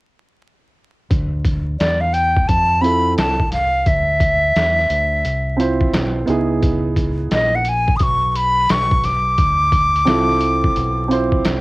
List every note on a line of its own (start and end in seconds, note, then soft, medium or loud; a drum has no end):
1.11 1.76 D2 medium
1.11 kick loud
1.11 closed hi-hat medium
1.45 kick medium
1.45 closed hi-hat medium
1.80 2.46 E2 medium
1.80 2.02 D5 medium
1.80 snare loud
1.80 closed hi-hat medium
2.01 2.15 F5 medium
2.13 2.49 G5 medium
2.13 closed hi-hat medium
2.37 kick medium
2.48 3.14 F2 medium
2.48 2.83 A5 medium
2.48 kick medium
2.48 closed hi-hat medium
2.81 3.34 C4 medium
2.81 3.35 E4 medium
2.81 3.35 F4 medium
2.81 3.36 A4 medium
2.81 3.17 B5 medium
2.81 closed hi-hat medium
3.18 3.83 C2 medium
3.18 3.50 A5 medium
3.18 snare loud
3.18 closed hi-hat medium
3.40 kick medium
3.52 3.89 F5 medium
3.52 snare soft
3.52 closed hi-hat medium
3.86 4.52 D2 medium
3.86 5.94 E5 medium
3.86 kick medium
3.86 closed hi-hat medium
4.20 kick medium
4.20 closed hi-hat medium
4.56 4.88 E2 medium
4.56 snare medium
4.56 closed hi-hat medium
4.79 snare soft
4.90 5.23 D2 medium
4.90 closed hi-hat medium
5.25 5.90 C2 medium
5.25 closed hi-hat medium
5.57 6.27 C4 medium
5.57 6.27 E4 medium
5.57 6.28 F4 medium
5.57 6.29 C5 medium
5.57 closed hi-hat medium
5.81 kick medium
5.93 6.26 B1 medium
5.93 snare loud
5.93 closed hi-hat loud
6.26 7.27 C#2 medium
6.26 7.55 B3 medium
6.26 7.56 D#4 medium
6.26 7.56 E4 medium
6.26 7.57 G#4 medium
6.26 closed hi-hat medium
6.63 kick loud
6.63 closed hi-hat medium
6.96 kick medium
6.96 closed hi-hat medium
7.31 7.97 A#1 loud
7.31 7.57 D#5 medium
7.31 snare medium
7.31 closed hi-hat medium
7.55 7.70 F#5 medium
7.65 7.98 G#5 medium
7.65 closed hi-hat medium
7.88 kick medium
7.97 8.66 B1 medium
7.97 8.04 D#6 medium
7.97 kick medium
7.97 closed hi-hat medium
8.03 8.32 C#6 medium
8.32 8.38 C#6 medium
8.32 closed hi-hat medium
8.36 8.73 B5 medium
8.69 9.35 B1 medium
8.69 9.06 C#6 loud
8.69 snare loud
8.69 closed hi-hat medium
8.91 kick medium
9.04 11.46 D6 loud
9.04 snare soft
9.04 closed hi-hat medium
9.38 10.04 D2 medium
9.38 kick medium
9.38 closed hi-hat medium
9.72 kick medium
9.72 closed hi-hat medium
9.96 closed hi-hat soft
10.05 10.73 C2 medium
10.05 11.05 C4 medium
10.05 11.05 E4 medium
10.05 11.06 F4 medium
10.05 11.07 A4 medium
10.05 snare medium
10.05 closed hi-hat medium
10.29 snare soft
10.41 closed hi-hat medium
10.64 kick medium
10.76 11.42 B1 medium
10.76 closed hi-hat medium
11.08 11.61 C4 medium
11.08 11.61 E4 medium
11.08 11.61 F4 medium
11.08 closed hi-hat medium
11.12 11.61 C5 medium
11.32 kick medium
11.45 11.61 C2 medium
11.45 snare loud
11.45 closed hi-hat loud